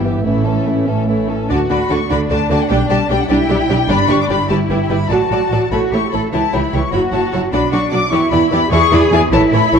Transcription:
Already playing: double bass section G1, cello section G2, french horn section E3 B3
0.04 bassoon E3, viola section B3, clarinet B3, violin section G4 E5
0.24 double bass section A1, cello section A2, bassoon E3, viola section A3, clarinet C#4, french horn section C#4, violin section E4 C#5
0.45 bassoon E3, viola section C#4, clarinet C#4, violin section A4 E5
0.66 bassoon E3, viola section A3, clarinet C#4, violin section E4 C#5
0.86 bassoon E3, viola section C#4, clarinet C#4, violin section A4 E5
1.07 bassoon E3, viola section A3, clarinet C#4, violin section E4 C#5
1.29 bassoon E3, viola section C#4, clarinet C#4, violin section A4 E5
1.49 double bass section D2, viola section D3 D4, cello section F#4, violin section F#4 D5 A5
1.70 double bass section D2, viola section D3 D4, violin section F#4 D5 B5
1.89 double bass section D2, viola section D3 D4, violin section F#4 D5 C#6
2.10 double bass section D2, viola section D3 D4, cello section D4, violin section F#4 D5 B5
2.30 double bass section D2, viola section D3 D4, violin section F#4 D5 A5
2.50 double bass section D2, viola section D3 D4, violin section F#4 D5 A5
2.61 violin section F#5
2.69 double bass section B1, viola section G3 D4, violin section G4 D5 G5
2.89 double bass section B1, viola section G3 D4, violin section G4 D5 A5
3.09 double bass section B1, viola section G3 D4, violin section G4 D5 G5
3.20 violin section F#5
3.28 double bass section B1, viola section G3 D4, cello section E4, violin section G4 D5 G5
3.49 double bass section B1, viola section G3 D4, violin section G4 D5
3.68 double bass section B1, viola section G3 D4, violin section G4 D5
3.88 double bass section G1, viola section G3 D4, cello section D4, violin section G4 D5 B5
4.09 double bass section G1, viola section G3 D4, violin section G4 D5 C#6
4.20 violin section D6
4.29 double bass section G1, viola section G3 D4, violin section G4 D5 B5
4.49 double bass section G1, viola section G3 E4, cello section E4, violin section G4 B4 A5
4.69 double bass section G1, viola section G3 E4, violin section G4 B4
4.82 violin section G5
4.89 double bass section G1, viola section G3 E4, violin section G4 B4 B5
5.10 double bass section A1, viola section F#3 F#4, cello section F#4, violin section A4 D5 A5
5.31 double bass section A1, viola section F#3 F#4, violin section A4 D5
5.52 double bass section A1, viola section F#3 F#4, violin section A4 D5
5.71 double bass section A1, viola section A3 E4, cello section F#4, violin section A4 C#5 B5
5.92 double bass section A1, viola section A3 E4, cello section G4, violin section A4 C#5 C#6
6.12 double bass section A1, viola section A3 E4, cello section A4, violin section A4 C#5 B5
6.33 double bass section C#2, viola section E3 E4, cello section E4, violin section G4 C#5 A5
6.52 double bass section C#2, viola section E3 E4, violin section G4 C#5 B5
6.73 double bass section C#2, viola section E3 E4, violin section G4 C#5 C#6
6.92 double bass section F#1, viola section F#3 E4, violin section F#4 C#5 B5, cello section F#4
7.12 double bass section F#1, viola section F#3 E4, violin section F#4 C#5 A5
7.32 double bass section F#1, viola section F#3 E4, violin section F#4 C#5 A5
7.52 double bass section B1, viola section F#3 D4, cello section D4, violin section F#4 D5 B5
7.72 double bass section B1, viola section F#3 D4, violin section F#4 D5 C#6
7.92 double bass section B1, viola section F#3 D4, violin section F#4 D5 D6
8.11 double bass section E2, viola section E3 E4, cello section E4, violin section G4 D5 C#6
8.31 double bass section E2, viola section E3 E4, violin section G4 D5 B5
8.51 double bass section E2, viola section E3 E4, violin section G4 D5 B5
8.71 double bass section E2, viola section E3 E4, cello section G#4, violin section G#4 D5 C#6
8.92 double bass section E2, viola section E3 E4, violin section G#4 D5 B5
9.12 double bass section E2, viola section E3 E4, violin section G#4 D5 G#5
9.32 double bass section A1, viola section E3 E4, cello section E4, violin section A4 C#5 A5
9.52 double bass section A1, viola section E3 E4, violin section A4 C#5 B5
9.73 double bass section A1, viola section E3 E4, violin section A4 C#5 C#6

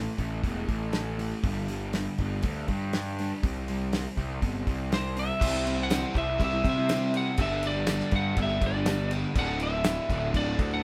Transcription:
Already playing: overdriven electric guitar A2 E3 A3
0.17 picked electric bass A1, overdriven electric guitar A2 E3 A3, kick, open hi-hat
0.43 picked electric bass E1, overdriven electric guitar A2 E3 A3, kick, open hi-hat
0.68 picked electric bass A1, overdriven electric guitar A2 E3 A3, kick, open hi-hat
0.93 overdriven electric guitar A2 E3 A3, snare, open hi-hat
1.18 overdriven electric guitar A2 E3 A3, open hi-hat
1.43 picked electric bass G1, overdriven electric guitar G2 D3 G3, kick, open hi-hat
1.68 overdriven electric guitar G2 D3 G3, open hi-hat
1.93 overdriven electric guitar G2 D3 G3, snare, open hi-hat
2.18 picked electric bass G1, overdriven electric guitar G2 D3 G3, kick, open hi-hat
2.42 picked electric bass D2, overdriven electric guitar G2 D3 G3, kick, open hi-hat
2.68 picked electric bass G2, overdriven electric guitar G2 D3 G3, kick, open hi-hat
2.93 overdriven electric guitar G2 D3 G3, snare, open hi-hat
3.19 overdriven electric guitar G2 D3 G3, open hi-hat
3.43 picked electric bass C2, overdriven electric guitar C3 G3 C4, kick, open hi-hat
3.68 overdriven electric guitar C3 G3 C4, open hi-hat
3.93 overdriven electric guitar C3 G3 C4, snare, open hi-hat
4.17 picked electric bass C2, overdriven electric guitar C3 G3 C4, kick, open hi-hat
4.41 picked electric bass G1, overdriven electric guitar C3 G3 C4, kick, open hi-hat
4.67 picked electric bass C2, overdriven electric guitar C3 G3 C4, kick, open hi-hat
4.91 overdriven electric guitar C3 G3 C4, lead electric guitar C5, snare, open hi-hat
5.16 overdriven electric guitar C3 G3 C4, lead electric guitar E5, open hi-hat
5.40 picked electric bass C2, overdriven electric guitar C3 G3 C4, steel-string acoustic guitar C3 E3 G3 C4 E4 C5, kick, crash
5.53 steel-string acoustic guitar G3 C4 E4 C5
5.66 steel-string acoustic guitar G3 C4 E4 C5, crash
5.77 steel-string acoustic guitar G3 C4 E4 C5
5.83 lead electric guitar F#5
5.89 steel-string acoustic guitar C3 E3 G3 C4 E4 C5, snare, tambourine, crash
6.13 picked electric bass C2, steel-string acoustic guitar G3 C4 E4 C5, overdriven electric guitar G3 C4, kick, crash
6.17 overdriven electric guitar C3, lead electric guitar E5
6.38 picked electric bass C2, overdriven electric guitar C3 G3 C4, kick, crash
6.44 lead electric guitar E5
6.52 steel-string acoustic guitar G3 C4 E4 C5
6.63 picked electric bass C3, steel-string acoustic guitar G3 C4 E4 C5, kick, crash
6.69 lead electric guitar E5
6.76 steel-string acoustic guitar G3 C4 E4 C5
6.88 steel-string acoustic guitar C3 E3 G3 C4 E4 C5, snare, tambourine, crash
7.14 steel-string acoustic guitar G3 C4 E4 C5, lead electric guitar F#5, crash
7.25 steel-string acoustic guitar G3 C4 E4 C5
7.37 picked electric bass G1, overdriven electric guitar G2 D3 G3, steel-string acoustic guitar G3 D4 G4 A4, kick, crash
7.42 lead electric guitar E5
7.50 steel-string acoustic guitar D4 G4 A4
7.63 steel-string acoustic guitar G3 D4 G4 A4, crash
7.67 lead electric guitar D5
7.76 steel-string acoustic guitar D4 G4 A4
7.87 steel-string acoustic guitar G3 D4 G4 A4, snare, tambourine, crash
8.00 snare
8.11 picked electric bass G2, overdriven electric guitar G2 D3 G3, steel-string acoustic guitar G3 D4 G4, kick, crash
8.16 steel-string acoustic guitar A4, lead electric guitar F#5
8.37 picked electric bass G1, overdriven electric guitar G2 D3, kick, crash
8.41 overdriven electric guitar G3, lead electric guitar E5
8.49 steel-string acoustic guitar D4 G4 A4
8.61 picked electric bass G1, steel-string acoustic guitar G3 D4 G4, kick, crash
8.65 steel-string acoustic guitar A4, lead electric guitar D5
8.75 steel-string acoustic guitar D4 G4 A4
8.86 steel-string acoustic guitar G3 D4 G4 A4, snare, tambourine, crash
9.11 steel-string acoustic guitar G3 D4 G4 A4, crash
9.35 picked electric bass D1, overdriven electric guitar D2 A2 D3, steel-string acoustic guitar D3 A3 D4 F#4 A4, kick, crash
9.39 lead electric guitar F#5
9.49 steel-string acoustic guitar D4 F#4 A4
9.59 steel-string acoustic guitar A3 D4 F#4 A4, lead electric guitar E5, crash
9.74 steel-string acoustic guitar D4 F#4 A4
9.84 steel-string acoustic guitar D3 A3 D4 F#4 A4, snare, tambourine, crash
10.09 picked electric bass D1, overdriven electric guitar A2 D3, steel-string acoustic guitar A3 D4 F#4 A4, kick, crash
10.13 overdriven electric guitar D2
10.34 picked electric bass D1, overdriven electric guitar D2 A2 D3, lead electric guitar D5, kick, crash
10.46 steel-string acoustic guitar D4 F#4 A4
10.58 picked electric bass D2, steel-string acoustic guitar A3 D4 F#4 A4, kick, crash
10.71 steel-string acoustic guitar D4 F#4 A4, lead electric guitar F#5

